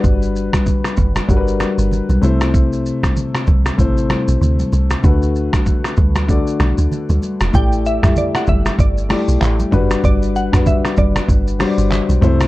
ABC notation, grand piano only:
X:1
M:4/4
L:1/16
Q:"Swing 16ths" 1/4=96
K:G
V:1 name="Grand piano"
[G,DFB]4 z4 [G,DF_B=B]4- [G,DF_B=B] z [C,A,Ec]2- | [C,A,Ec]4 z4 [C,A,Ec]4- [C,A,Ec] z3 | [D,A,FB]4- [D,A,FB] z3 [D,A,Fd]4- [D,A,Fd] z3 | [A,EGd]2 z [A,EGe]4 z3 [A,EGd]4 [G,DFB]2- |
[G,DFB]2 z [G,DFB]4 z3 [G,DFcd]4 [C,A,Ec]2 |]